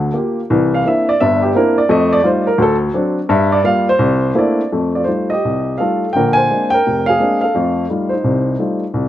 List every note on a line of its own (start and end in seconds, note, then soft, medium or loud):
0.00 0.10 D2 medium
0.14 0.39 A#3 medium
0.14 0.39 F4 medium
0.14 0.40 G4 medium
0.50 0.81 C2 medium
0.50 0.81 E3 medium
0.74 0.86 F5 medium
0.86 1.10 A#3 medium
0.86 1.10 C4 soft
0.86 1.10 D4 medium
0.86 1.11 E4 medium
0.86 1.09 E5 medium
1.09 1.21 D5 medium
1.20 1.51 G1 medium
1.20 1.51 G2 medium
1.20 1.43 E5 loud
1.42 1.55 G4 medium
1.55 1.79 A#3 medium
1.55 1.79 C4 medium
1.55 1.79 D4 medium
1.55 1.80 E4 medium
1.55 1.78 A#4 medium
1.78 1.89 D5 medium
1.89 2.19 F2 medium
1.89 2.19 A3 medium
1.89 2.12 D#5 medium
2.13 2.24 D5 loud
2.23 2.48 G3 medium
2.23 2.48 A3 medium
2.23 2.48 D#4 medium
2.23 2.48 F4 medium
2.23 2.47 C5 medium
2.47 2.58 A#4 medium
2.58 2.88 D2 medium
2.62 2.75 A4 loud
2.94 3.18 F#3 medium
2.94 3.18 C4 medium
2.94 3.18 D4 medium
3.29 3.59 G2 loud
3.29 3.51 E5 medium
3.52 3.63 D5 medium
3.64 3.88 G3 medium
3.64 3.88 A#3 medium
3.64 3.88 F4 medium
3.64 3.87 F5 loud
3.89 4.33 C5 loud
3.99 4.30 C2 medium
4.35 4.60 A3 medium
4.35 4.60 A#3 medium
4.35 4.60 C4 medium
4.35 4.60 D4 medium
4.35 4.60 E4 medium
4.35 4.65 D5 medium
4.72 5.03 F2 medium
4.72 5.03 A3 medium
4.95 5.07 F4 soft
4.95 5.07 D5 medium
5.04 5.32 G3 soft
5.04 5.33 A3 soft
5.04 5.29 D#4 soft
5.04 5.33 F4 medium
5.04 5.30 C5 medium
5.30 5.77 G4 medium
5.30 5.80 D#5 medium
5.45 5.75 C2 medium
5.78 6.04 G3 soft
5.78 6.04 A3 soft
5.78 6.04 D#4 soft
5.78 6.04 F4 medium
5.78 6.12 A4 medium
5.78 6.11 F5 medium
6.13 6.46 A#1 medium
6.13 6.45 D3 medium
6.13 6.37 A#4 medium
6.13 6.37 G5 medium
6.33 6.70 C5 medium
6.33 6.68 G#5 loud
6.50 6.74 G#3 medium
6.50 6.75 A#3 soft
6.50 6.74 C4 soft
6.50 6.74 D4 soft
6.70 7.05 A#4 medium
6.70 7.03 G5 loud
6.87 7.16 F1 medium
7.06 7.40 G#4 medium
7.06 7.39 F5 loud
7.19 7.43 G#3 medium
7.19 7.43 A#3 soft
7.19 7.44 C4 soft
7.19 7.44 D4 medium
7.41 7.86 A4 medium
7.41 7.85 F5 medium
7.55 7.85 F2 medium
7.55 7.84 A3 medium
7.90 8.13 G3 medium
7.90 8.13 A3 soft
7.90 8.12 D#4 medium
7.90 8.14 F4 medium
8.09 8.58 D#4 medium
8.09 8.76 C5 medium
8.24 8.53 C2 medium
8.24 8.54 C3 medium
8.59 8.83 G3 medium
8.59 8.83 A3 soft
8.59 8.83 D#4 soft
8.59 8.83 F4 medium
8.94 9.09 C2 medium